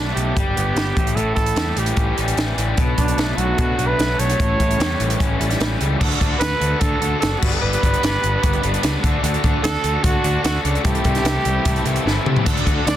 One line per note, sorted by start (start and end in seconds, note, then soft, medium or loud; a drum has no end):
0.00 0.11 B1 medium
0.00 0.36 B2 medium
0.00 0.36 A3 medium
0.00 0.13 D4 medium
0.15 0.31 B1 medium
0.15 0.35 F#3 medium
0.15 1.17 G4 loud
0.15 closed hi-hat medium
0.36 0.51 G1 medium
0.36 0.75 G3 medium
0.36 kick loud
0.36 closed hi-hat medium
0.56 0.71 G1 medium
0.56 0.96 B3 medium
0.56 closed hi-hat medium
0.76 0.91 G1 medium
0.76 0.96 G3 medium
0.76 snare loud
0.76 closed hi-hat medium
0.96 1.11 A1 medium
0.96 1.15 A2 medium
0.96 kick loud
0.96 closed hi-hat medium
1.07 closed hi-hat medium
1.16 1.31 A1 loud
1.16 2.17 A2 medium
1.16 1.34 A4 loud
1.16 closed hi-hat medium
1.35 1.52 A1 medium
1.35 1.80 A4 loud
1.35 kick medium
1.35 closed hi-hat medium
1.46 closed hi-hat medium
1.56 1.71 E2 medium
1.56 2.16 G3 medium
1.56 snare loud
1.56 closed hi-hat medium
1.76 1.91 A1 medium
1.76 2.36 E3 medium
1.76 2.58 G4 medium
1.76 closed hi-hat medium
1.86 closed hi-hat medium
1.96 2.12 A1 medium
1.96 2.77 C#4 medium
1.96 kick loud
1.96 closed hi-hat medium
2.17 2.32 A1 medium
2.17 2.56 G3 medium
2.17 closed hi-hat medium
2.28 closed hi-hat medium
2.37 2.52 A1 medium
2.37 2.78 E3 medium
2.37 snare loud
2.37 closed hi-hat medium
2.57 2.72 A1 medium
2.57 2.78 G3 medium
2.57 closed hi-hat medium
2.77 2.93 B1 medium
2.77 3.79 B2 medium
2.77 4.38 F#3 medium
2.77 4.37 B3 medium
2.77 4.38 D4 medium
2.77 4.37 A4 medium
2.77 kick loud
2.77 closed hi-hat medium
2.98 3.13 B1 medium
2.98 3.39 D4 medium
2.98 kick medium
2.98 closed hi-hat medium
3.08 closed hi-hat medium
3.17 3.32 B1 medium
3.17 3.77 A3 medium
3.17 snare loud
3.17 closed hi-hat medium
3.37 3.53 B1 medium
3.37 3.97 F#3 medium
3.37 3.89 F#4 loud
3.37 closed hi-hat medium
3.58 3.73 B2 medium
3.58 4.39 D4 medium
3.58 kick loud
3.58 closed hi-hat medium
3.77 3.93 B1 medium
3.77 4.17 A3 medium
3.77 closed hi-hat medium
3.87 4.21 B4 loud
3.98 4.14 B1 medium
3.98 4.39 F#3 medium
3.98 snare loud
3.98 closed hi-hat medium
4.18 4.34 B1 medium
4.18 4.79 A3 medium
4.18 5.61 C#5 loud
4.18 closed hi-hat medium
4.30 closed hi-hat medium
4.38 4.54 A1 medium
4.38 5.39 A2 medium
4.38 5.99 G3 medium
4.38 5.99 C#4 medium
4.38 5.99 E4 medium
4.38 6.00 A4 medium
4.38 kick loud
4.38 closed hi-hat medium
4.60 4.75 A1 medium
4.60 kick medium
4.60 closed hi-hat medium
4.71 closed hi-hat medium
4.79 4.94 E2 medium
4.79 5.38 G3 medium
4.79 snare loud
4.79 closed hi-hat medium
4.99 5.15 A1 medium
4.99 5.59 E3 medium
4.99 closed hi-hat medium
5.10 closed hi-hat medium
5.20 5.35 A1 medium
5.20 6.01 C#4 medium
5.20 kick loud
5.20 closed hi-hat medium
5.40 5.55 A1 medium
5.40 5.79 G3 medium
5.40 closed hi-hat medium
5.50 snare soft
5.50 closed hi-hat medium
5.60 5.75 A1 loud
5.60 5.99 E3 medium
5.60 snare loud
5.60 closed hi-hat medium
5.80 5.95 C#2 medium
5.80 5.99 G3 medium
5.80 closed hi-hat medium
6.00 6.13 D2 loud
6.00 6.18 D3 medium
6.00 6.19 D4 medium
6.00 6.20 F#4 loud
6.00 6.20 A4 loud
6.00 7.41 A4 medium
6.00 10.81 D5 medium
6.00 9.01 F#5 medium
6.00 7.41 C#6 medium
6.00 kick loud
6.00 crash loud
6.11 closed hi-hat soft
6.19 6.33 D2 medium
6.19 6.38 D3 medium
6.19 6.39 D4 medium
6.19 6.39 F#4 medium
6.19 6.39 A4 medium
6.19 kick medium
6.19 closed hi-hat medium
6.39 6.53 D2 medium
6.39 6.57 D3 medium
6.39 6.59 D4 medium
6.39 6.59 F#4 medium
6.39 6.59 A4 medium
6.39 6.81 B4 loud
6.39 snare loud
6.39 closed hi-hat medium
6.58 6.73 D2 loud
6.58 6.78 D3 loud
6.58 6.79 D4 medium
6.58 6.79 F#4 loud
6.58 6.79 A4 loud
6.58 closed hi-hat medium
6.79 6.94 D2 medium
6.79 6.98 D3 medium
6.79 7.00 D4 medium
6.79 7.00 F#4 medium
6.79 7.20 A4 loud
6.79 7.00 A4 medium
6.79 kick loud
6.79 closed hi-hat medium
6.99 7.14 D2 medium
6.99 7.20 D3 medium
6.99 7.21 D4 loud
6.99 7.21 F#4 medium
6.99 7.21 A4 loud
6.99 closed hi-hat medium
7.20 7.35 F#1 medium
7.20 7.40 D3 loud
7.20 7.41 D4 loud
7.20 7.42 F#4 loud
7.20 7.41 A4 loud
7.20 snare loud
7.20 closed hi-hat loud
7.39 7.55 G1 medium
7.39 7.61 G3 loud
7.39 7.62 B3 loud
7.39 7.62 D4 loud
7.39 7.55 F#4 medium
7.39 9.02 G4 medium
7.39 7.62 B4 loud
7.39 9.02 B5 medium
7.39 kick loud
7.39 crash loud
7.53 7.61 A4 medium
7.59 7.75 G1 loud
7.59 7.81 G3 loud
7.59 7.81 B3 loud
7.59 7.82 D4 loud
7.59 9.02 B4 loud
7.59 7.82 B4 loud
7.73 closed hi-hat medium
7.82 7.95 G1 medium
7.82 8.01 G3 medium
7.82 8.03 B3 medium
7.82 8.03 D4 medium
7.82 8.02 B4 medium
7.82 kick medium
7.82 closed hi-hat medium
7.94 closed hi-hat soft
8.02 8.16 G1 medium
8.02 8.21 G3 medium
8.02 8.22 B3 loud
8.02 8.22 D4 medium
8.02 8.22 B4 loud
8.02 snare loud
8.02 closed hi-hat loud
8.22 8.36 G1 medium
8.22 8.40 G3 loud
8.22 8.41 B3 loud
8.22 8.41 D4 medium
8.22 8.42 B4 loud
8.22 closed hi-hat medium
8.41 8.56 G1 medium
8.41 8.60 G3 medium
8.41 8.61 B3 medium
8.41 8.61 D4 loud
8.41 8.62 B4 medium
8.41 kick loud
8.41 closed hi-hat loud
8.53 closed hi-hat soft
8.61 8.76 G1 medium
8.61 8.81 G3 medium
8.61 8.83 B3 medium
8.61 8.82 D4 loud
8.61 8.83 B4 loud
8.61 closed hi-hat medium
8.74 closed hi-hat soft
8.83 8.96 C#2 medium
8.83 9.02 G3 loud
8.83 9.03 B3 loud
8.83 9.02 D4 loud
8.83 9.03 B4 loud
8.83 snare loud
8.83 closed hi-hat loud
9.02 9.16 D2 medium
9.02 9.22 D3 loud
9.02 9.22 D4 loud
9.02 9.23 F#4 loud
9.02 12.96 A4 medium
9.02 9.24 A4 loud
9.02 10.83 F#5 medium
9.02 10.82 C#6 medium
9.02 kick loud
9.02 closed hi-hat medium
9.23 9.36 D2 loud
9.23 9.41 D3 loud
9.23 9.42 D4 loud
9.23 9.43 F#4 loud
9.23 9.44 A4 loud
9.23 closed hi-hat loud
9.34 closed hi-hat soft
9.43 9.56 D2 medium
9.43 9.61 D3 medium
9.43 9.62 D4 medium
9.43 9.63 F#4 medium
9.43 9.64 A4 loud
9.43 kick medium
9.43 closed hi-hat medium
9.63 9.76 D2 medium
9.63 9.81 D3 medium
9.63 9.82 D4 loud
9.63 9.82 F#4 medium
9.63 10.05 A4 loud
9.63 9.84 A4 medium
9.63 snare loud
9.63 closed hi-hat loud
9.82 9.96 D2 medium
9.82 10.01 D3 loud
9.82 10.02 D4 loud
9.82 10.03 F#4 loud
9.82 10.04 A4 loud
9.82 closed hi-hat medium
10.02 10.17 D2 loud
10.02 10.22 D3 medium
10.02 10.23 D4 medium
10.02 10.43 F#4 loud
10.02 10.23 F#4 medium
10.02 10.25 A4 loud
10.02 kick loud
10.02 closed hi-hat loud
10.23 10.37 D2 medium
10.23 10.42 D3 medium
10.23 10.43 D4 medium
10.23 10.43 F#4 medium
10.23 10.45 A4 loud
10.23 closed hi-hat medium
10.43 10.57 D2 medium
10.43 10.62 D3 medium
10.43 10.63 D4 loud
10.43 10.63 F#4 loud
10.43 10.64 A4 loud
10.43 snare loud
10.43 closed hi-hat medium
10.63 10.77 C#2 medium
10.63 10.83 D3 medium
10.63 10.83 D4 medium
10.63 10.83 F#4 medium
10.63 10.86 A4 loud
10.63 closed hi-hat medium
10.75 closed hi-hat soft
10.84 10.97 C2 loud
10.84 11.02 C3 loud
10.84 11.02 E3 loud
10.84 11.04 A3 loud
10.84 11.04 C4 loud
10.84 11.04 E4 loud
10.84 12.22 G4 loud
10.84 11.05 A4 loud
10.84 12.44 E5 medium
10.84 12.45 G5 medium
10.84 12.45 C6 medium
10.84 kick loud
10.84 closed hi-hat medium
10.95 closed hi-hat soft
11.03 11.17 C2 medium
11.03 11.22 C3 medium
11.03 11.23 E3 medium
11.03 11.24 A3 medium
11.03 11.24 C4 medium
11.03 11.24 E4 loud
11.03 11.25 A4 medium
11.03 kick medium
11.03 closed hi-hat medium
11.15 snare soft
11.15 closed hi-hat soft
11.23 11.37 C2 medium
11.23 11.42 C3 medium
11.23 11.43 E3 medium
11.23 11.43 A3 medium
11.23 11.44 C4 medium
11.23 11.44 E4 loud
11.23 11.45 A4 medium
11.23 snare loud
11.23 closed hi-hat loud
11.43 11.58 C2 medium
11.43 11.63 C3 medium
11.43 11.63 E3 loud
11.43 11.64 A3 loud
11.43 11.64 C4 loud
11.43 11.65 E4 loud
11.43 11.65 A4 medium
11.43 closed hi-hat medium
11.64 11.78 C2 medium
11.64 11.84 C3 medium
11.64 11.84 E3 medium
11.64 11.84 A3 loud
11.64 11.85 C4 medium
11.64 11.86 E4 medium
11.64 11.85 A4 loud
11.64 kick loud
11.64 closed hi-hat loud
11.76 closed hi-hat soft
11.85 11.98 C2 medium
11.85 12.03 C3 medium
11.85 12.04 E3 medium
11.85 12.04 A3 medium
11.85 12.05 C4 loud
11.85 12.05 E4 medium
11.85 12.06 A4 loud
11.85 closed hi-hat medium
11.96 closed hi-hat medium
12.04 12.18 G1 medium
12.04 12.24 C3 medium
12.04 12.24 E3 medium
12.04 12.25 A3 loud
12.04 12.25 C4 loud
12.04 12.26 E4 loud
12.04 12.26 A4 loud
12.04 snare medium
12.25 12.44 C3 loud
12.25 12.38 C3 medium
12.25 12.45 E3 medium
12.25 12.44 A3 medium
12.25 12.45 C4 loud
12.25 12.45 E4 loud
12.25 12.45 A4 medium
12.25 mid tom medium
12.36 floor tom medium
12.45 12.59 D2 loud
12.45 12.63 D3 loud
12.45 12.64 D4 loud
12.45 12.96 D4 medium
12.45 12.65 F#4 loud
12.45 12.64 A4 loud
12.45 12.96 F#5 medium
12.45 12.96 C#6 medium
12.45 kick loud
12.45 closed hi-hat loud
12.45 crash medium
12.57 closed hi-hat medium
12.64 12.79 D2 medium
12.64 12.84 D3 medium
12.64 12.85 D4 medium
12.64 12.86 F#4 medium
12.64 12.86 A4 medium
12.64 kick medium
12.64 closed hi-hat medium
12.85 12.96 D2 medium
12.85 12.96 D3 medium
12.85 12.96 D4 medium
12.85 12.96 F#4 medium
12.85 12.96 A4 loud
12.85 12.96 D5 loud
12.85 snare loud
12.85 closed hi-hat loud